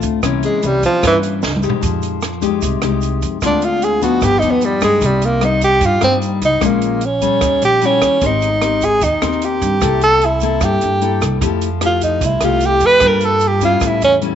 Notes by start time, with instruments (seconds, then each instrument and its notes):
Already playing: nylon-string guitar A2 A3 C4 F4
0.02 upright bass D2, kick, closed hi-hat, shaker
0.23 upright bass C2, nylon-string guitar C3 E3 A#3 C#4, kick, cross-stick, closed hi-hat, shaker
0.43 tenor saxophone G#3, closed hi-hat, shaker
0.62 upright bass C2, nylon-string guitar E3 A#3 C#4, tenor saxophone G3, closed hi-hat, shaker
0.83 tenor saxophone F3, kick, closed hi-hat, shaker
1.01 nylon-string guitar G2 E3 A#3 C#4, upright bass G2, kick, cross-stick, closed hi-hat, shaker
1.07 tenor saxophone E3
1.23 closed hi-hat, shaker
1.43 upright bass C#2, snare, shaker
1.56 mid tom
1.62 upright bass E2, nylon-string guitar G#3 D#4 G4, shaker
1.70 floor tom
1.81 upright bass F2, nylon-string guitar F3, kick, closed hi-hat, shaker
2.02 closed hi-hat, shaker
2.22 cross-stick, closed hi-hat, shaker
2.41 nylon-string guitar G#3 D#4 G4, kick, closed hi-hat, shaker
2.61 upright bass C2, nylon-string guitar C3, kick, closed hi-hat, shaker
2.82 upright bass C2, nylon-string guitar G#3 D#4 G4, cross-stick, closed hi-hat, shaker
3.02 closed hi-hat, shaker
3.22 upright bass F2, kick, closed hi-hat, shaker
3.41 upright bass D2, nylon-string guitar D3 G#3 C4 F4, kick, cross-stick, closed hi-hat, shaker
3.46 tenor saxophone D4
3.61 tenor saxophone F4, closed hi-hat, shaker
3.82 tenor saxophone G#4, closed hi-hat, shaker
4.02 nylon-string guitar F3 B3 D#4, tenor saxophone F#4, kick, closed hi-hat, shaker
4.21 upright bass G1, nylon-string guitar G2, tenor saxophone G4, kick, cross-stick, closed hi-hat, shaker
4.39 upright bass D#2, nylon-string guitar F3 B3, tenor saxophone D#4, closed hi-hat, shaker
4.43 nylon-string guitar D#4
4.51 tenor saxophone B3
4.61 tenor saxophone G3, closed hi-hat, shaker
4.81 upright bass G1, nylon-string guitar G3 A#3 D#4, tenor saxophone G#3, kick, cross-stick, closed hi-hat, shaker
5.01 upright bass C2, nylon-string guitar C3, kick, closed hi-hat, shaker
5.06 tenor saxophone G3
5.22 tenor saxophone A#3, closed hi-hat, shaker
5.41 nylon-string guitar G3 A#3 D#4, tenor saxophone D#4, cross-stick, closed hi-hat
5.61 tenor saxophone G4, kick, closed hi-hat, shaker
5.81 upright bass G2, nylon-string guitar G2, kick, closed hi-hat, shaker
5.86 tenor saxophone F4
6.01 upright bass G2, nylon-string guitar G3 A#3 D#4, tenor saxophone C4, cross-stick, closed hi-hat, shaker
6.22 closed hi-hat, shaker
6.41 upright bass C2, tenor saxophone D#4, kick, closed hi-hat, shaker
6.60 upright bass A#1, nylon-string guitar A#2 G#3 C#4 F4, kick, cross-stick, closed hi-hat, shaker
6.65 tenor saxophone A#3
6.82 closed hi-hat, shaker
7.01 closed hi-hat
7.06 tenor saxophone C#4
7.21 nylon-string guitar G3 C#4, kick, closed hi-hat, shaker
7.40 upright bass D#2, nylon-string guitar D#3, kick, cross-stick, closed hi-hat, shaker
7.62 upright bass A#1, tenor saxophone G4, closed hi-hat, shaker
7.81 nylon-string guitar G3 C#4 E4, closed hi-hat, shaker
7.86 tenor saxophone C#4
8.02 upright bass D#2, kick, cross-stick, closed hi-hat, shaker
8.21 upright bass G#1, nylon-string guitar G#3 C4 G4 A#4, kick, closed hi-hat, shaker
8.26 tenor saxophone D#4
8.41 closed hi-hat, shaker
8.62 nylon-string guitar C4 G4 A#4, cross-stick, closed hi-hat
8.81 tenor saxophone G#4, kick, closed hi-hat, shaker
9.01 upright bass D#2, nylon-string guitar D#3, tenor saxophone D#4, kick, closed hi-hat, shaker
9.21 upright bass D#2, nylon-string guitar C4 G4 A#4, cross-stick, closed hi-hat, shaker
9.42 tenor saxophone G4, closed hi-hat
9.61 upright bass G2, kick, closed hi-hat, shaker
9.81 upright bass C2, nylon-string guitar C3 A#3 E4 A4, kick, cross-stick, closed hi-hat, shaker
10.01 tenor saxophone A4, closed hi-hat, shaker
10.21 tenor saxophone E4, closed hi-hat
10.40 nylon-string guitar A#3 E4 A4, kick, closed hi-hat, shaker
10.61 upright bass G2, nylon-string guitar G2, tenor saxophone G4, kick, cross-stick, closed hi-hat, shaker
10.81 upright bass G2, closed hi-hat, shaker
11.01 nylon-string guitar A#3 E4 A4, closed hi-hat
11.21 upright bass C2, kick, cross-stick, closed hi-hat, shaker
11.41 upright bass F2, nylon-string guitar F3 A3 E4 G4, kick, closed hi-hat, shaker
11.61 closed hi-hat, shaker
11.81 nylon-string guitar A3 E4 G4, cross-stick, closed hi-hat
11.86 tenor saxophone F4
12.01 tenor saxophone D#4, kick, closed hi-hat, shaker
12.21 upright bass C2, nylon-string guitar C3, kick, closed hi-hat, shaker
12.26 tenor saxophone E4
12.41 upright bass C2, nylon-string guitar A3 E4 G4, tenor saxophone F4, cross-stick, closed hi-hat, shaker
12.61 closed hi-hat, shaker
12.66 tenor saxophone G4
12.80 upright bass F2, kick, closed hi-hat, shaker
12.86 tenor saxophone B4
13.00 upright bass G2, nylon-string guitar G3 A#3 F4 A4, kick, cross-stick, closed hi-hat, shaker
13.07 tenor saxophone A#4
13.20 closed hi-hat, shaker
13.25 tenor saxophone A4
13.40 closed hi-hat, shaker
13.48 tenor saxophone G4
13.61 nylon-string guitar G3 C#4 E4, kick, closed hi-hat, shaker
13.65 tenor saxophone F4
13.81 upright bass A2, nylon-string guitar A2, kick, cross-stick, closed hi-hat, shaker
13.87 tenor saxophone E4
14.01 upright bass E2, tenor saxophone C#4, closed hi-hat, shaker
14.21 nylon-string guitar G3 C#4 E4, closed hi-hat